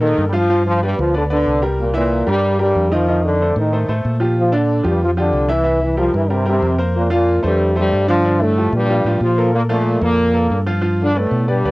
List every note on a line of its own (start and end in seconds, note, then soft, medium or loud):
0.00 0.14 A#2 loud
0.00 0.25 D#3 loud
0.00 0.27 A#3 medium
0.00 0.24 D#4 medium
0.00 0.28 A4 medium
0.00 0.28 A#4 medium
0.18 0.93 G2 medium
0.26 0.33 G3 medium
0.33 0.46 F3 medium
0.33 0.65 F3 loud
0.33 0.46 F4 medium
0.33 0.65 F4 medium
0.33 0.47 F5 medium
0.50 0.76 F3 medium
0.50 0.76 F4 medium
0.50 0.76 F5 medium
0.66 0.81 F3 loud
0.66 0.81 F4 medium
0.82 0.97 G2 medium
0.82 0.97 G3 loud
0.82 1.08 B3 medium
0.82 1.09 B4 medium
0.82 1.09 D5 medium
0.98 1.43 D2 medium
0.98 1.13 F3 medium
0.98 1.13 F4 medium
1.13 1.23 D3 medium
1.13 1.27 B3 medium
1.13 1.23 D4 medium
1.13 1.27 B4 medium
1.13 1.27 D5 medium
1.30 1.61 D3 loud
1.30 1.56 B3 medium
1.30 1.61 D4 medium
1.30 1.57 B4 medium
1.30 1.57 D5 medium
1.46 2.21 C2 medium
1.62 1.89 G3 medium
1.62 1.89 G4 medium
1.62 1.89 A#4 medium
1.80 1.94 A#2 medium
1.80 1.95 A#3 medium
1.94 2.25 A#2 loud
1.94 2.21 E3 medium
1.94 2.25 A#3 medium
1.94 2.21 E4 medium
1.94 2.21 E5 medium
2.27 2.72 G2 medium
2.27 2.58 G2 medium
2.27 2.53 G3 medium
2.27 2.57 G3 loud
2.27 2.53 G4 medium
2.27 2.53 A#4 medium
2.59 2.90 G2 medium
2.59 2.89 G3 loud
2.59 2.86 G3 medium
2.59 2.86 G4 medium
2.59 2.86 A#4 medium
2.75 3.50 F2 medium
2.92 3.05 D#3 medium
2.92 3.24 F3 medium
2.92 3.05 D#4 medium
2.92 3.24 F4 medium
2.92 3.05 D#5 medium
3.08 3.35 D#3 medium
3.08 3.35 D#4 medium
3.08 3.35 D#5 medium
3.24 3.54 D3 medium
3.24 3.55 D4 medium
3.41 3.67 A3 medium
3.41 3.67 A4 medium
3.41 3.68 C5 medium
3.56 3.86 A2 medium
3.56 3.92 D#3 medium
3.56 3.92 D#4 medium
3.73 3.86 A3 medium
3.73 3.86 A4 medium
3.73 3.86 C5 medium
3.88 4.03 A2 medium
3.88 4.15 A3 medium
3.88 4.15 A4 medium
3.88 4.15 C5 medium
4.05 4.80 A#2 medium
4.20 4.47 F3 medium
4.20 4.47 F4 medium
4.20 4.47 G4 medium
4.39 4.53 F3 medium
4.39 4.53 F4 medium
4.52 4.79 D3 medium
4.52 4.86 D3 medium
4.52 4.79 D4 medium
4.52 4.86 D4 medium
4.52 4.79 D5 medium
4.83 5.30 F2 loud
4.83 5.01 G2 medium
4.83 5.11 F3 medium
4.83 5.01 G3 medium
4.83 5.11 F4 medium
4.83 5.11 G4 medium
5.03 5.10 F3 medium
5.03 5.10 F4 medium
5.17 5.48 D3 medium
5.17 5.44 F3 medium
5.17 5.48 D4 medium
5.17 5.44 F4 medium
5.17 5.44 G4 medium
5.33 6.08 C2 medium
5.49 5.63 E3 medium
5.49 5.82 E3 loud
5.49 5.63 E4 medium
5.49 5.82 E4 medium
5.49 5.63 E5 medium
5.64 5.91 E3 medium
5.64 5.92 E4 medium
5.64 5.92 E5 medium
5.83 5.98 E3 medium
5.83 5.98 E4 medium
5.97 6.14 F3 medium
5.97 6.24 G3 medium
5.97 6.13 F4 medium
5.97 6.24 G4 medium
5.97 6.24 A#4 medium
6.14 6.59 G2 loud
6.14 6.30 E3 medium
6.14 6.30 E4 medium
6.30 6.46 C3 medium
6.30 6.44 G3 medium
6.30 6.46 C4 medium
6.30 6.44 G4 medium
6.30 6.44 A#4 medium
6.46 6.77 C3 medium
6.46 6.73 G3 medium
6.46 6.77 C4 medium
6.46 6.73 G4 medium
6.46 6.73 A#4 medium
6.62 7.38 F2 medium
6.79 7.05 A#3 medium
6.79 7.05 A#4 medium
6.79 7.06 C5 medium
6.95 7.11 A#2 medium
6.95 7.10 A#3 medium
7.10 7.42 A#2 medium
7.10 7.37 F3 medium
7.10 7.42 A#3 medium
7.10 7.37 F4 medium
7.10 7.38 F5 medium
7.43 7.89 F2 loud
7.43 7.74 G2 medium
7.43 7.74 G3 loud
7.43 7.70 A3 medium
7.43 7.70 A4 medium
7.43 7.70 C5 medium
7.76 8.07 G2 medium
7.76 8.07 G3 loud
7.76 8.02 A3 medium
7.76 8.03 A4 medium
7.76 8.03 C5 medium
7.93 8.68 G2 medium
8.07 8.21 D3 medium
8.07 8.39 F3 loud
8.07 8.22 D4 medium
8.07 8.38 F4 medium
8.07 8.22 D5 medium
8.24 8.51 D3 medium
8.24 8.51 D4 medium
8.24 8.51 D5 medium
8.40 8.73 A2 medium
8.40 8.73 A3 loud
8.58 8.84 F3 medium
8.58 8.84 F4 medium
8.58 8.84 G4 medium
8.72 9.18 G2 medium
8.72 9.03 A#2 loud
8.72 9.18 G3 loud
8.89 9.03 F3 medium
8.89 9.03 F4 medium
8.89 9.03 G4 medium
9.04 9.20 A2 medium
9.04 9.32 F3 medium
9.04 9.32 F4 medium
9.04 9.33 G4 medium
9.21 9.96 A#2 medium
9.21 9.52 F3 loud
9.21 9.51 F4 medium
9.38 9.64 A#3 medium
9.38 9.65 A4 medium
9.38 9.64 A#4 medium
9.54 9.61 A#2 medium
9.54 9.61 A#3 loud
9.69 9.99 A#2 medium
9.69 9.96 F3 medium
9.69 9.99 A3 loud
9.69 9.96 F4 medium
9.69 9.96 F5 medium
10.01 10.47 F2 medium
10.01 10.47 A#2 medium
10.01 10.47 A#3 loud
10.01 10.29 A#3 medium
10.01 10.29 A4 medium
10.01 10.29 A#4 medium
10.34 10.60 A#3 medium
10.34 10.61 A4 medium
10.34 10.61 A#4 medium
10.50 11.25 G2 medium
10.50 10.58 A#2 medium
10.50 10.58 A#3 medium
10.67 10.80 F3 medium
10.67 10.80 F4 medium
10.67 10.80 F5 medium
10.82 11.09 F3 medium
10.82 11.09 F4 medium
10.82 11.09 F5 medium
11.01 11.15 D3 medium
11.01 11.16 D4 loud
11.15 11.47 A2 medium
11.15 11.48 A3 loud
11.15 11.41 B3 medium
11.15 11.42 B4 medium
11.15 11.42 D5 medium
11.31 11.61 B2 medium
11.48 11.71 G2 medium
11.48 11.71 G3 medium
11.48 11.61 B3 medium
11.48 11.61 B4 medium
11.48 11.61 D5 medium
11.64 11.71 D2 medium
11.64 11.71 B3 medium
11.64 11.71 B4 medium
11.64 11.71 D5 medium